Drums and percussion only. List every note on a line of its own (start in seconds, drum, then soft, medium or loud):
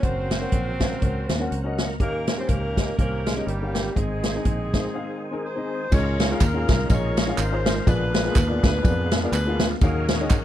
0.03 kick medium
0.03 closed hi-hat medium
0.31 snare medium
0.31 closed hi-hat medium
0.52 kick medium
0.52 closed hi-hat medium
0.80 kick medium
0.80 snare loud
0.80 closed hi-hat medium
1.02 kick medium
1.02 closed hi-hat medium
1.29 snare loud
1.29 closed hi-hat medium
1.52 closed hi-hat medium
1.78 snare medium
1.78 closed hi-hat medium
2.00 kick loud
2.00 closed hi-hat medium
2.27 snare loud
2.27 closed hi-hat medium
2.49 kick medium
2.49 closed hi-hat medium
2.77 kick medium
2.77 snare loud
2.77 closed hi-hat medium
2.99 kick loud
2.99 closed hi-hat medium
3.26 snare loud
3.26 closed hi-hat medium
3.48 closed hi-hat medium
3.75 snare medium
3.75 closed hi-hat medium
3.96 kick medium
3.96 closed hi-hat medium
4.23 snare loud
4.23 closed hi-hat medium
4.45 kick medium
4.45 closed hi-hat medium
4.74 kick medium
4.74 snare loud
4.74 closed hi-hat medium
5.92 kick loud
5.92 crash medium
5.92 tambourine medium
6.20 snare loud
6.20 ride medium
6.20 tambourine medium
6.40 kick loud
6.40 clap loud
6.40 ride medium
6.40 tambourine loud
6.68 kick loud
6.68 snare loud
6.68 ride medium
6.68 tambourine medium
6.90 kick loud
6.90 ride medium
6.90 tambourine medium
7.17 snare loud
7.17 ride medium
7.17 tambourine medium
7.38 clap loud
7.38 ride medium
7.38 tambourine loud
7.66 snare loud
7.66 ride medium
7.66 tambourine medium
7.87 kick loud
7.87 ride medium
7.87 tambourine medium
8.14 snare loud
8.14 ride medium
8.14 tambourine medium
8.35 kick loud
8.35 clap loud
8.35 ride medium
8.35 tambourine loud
8.63 kick loud
8.63 snare loud
8.63 ride medium
8.63 tambourine medium
8.85 kick loud
8.85 ride medium
8.85 tambourine medium
9.11 snare loud
9.11 ride medium
9.11 tambourine medium
9.33 clap loud
9.33 ride medium
9.33 tambourine loud
9.60 snare loud
9.60 ride medium
9.60 tambourine medium
9.81 kick loud
9.81 ride medium
9.81 tambourine medium
10.08 snare loud
10.08 ride medium
10.08 tambourine medium
10.30 kick loud
10.30 clap loud
10.30 ride medium
10.30 tambourine loud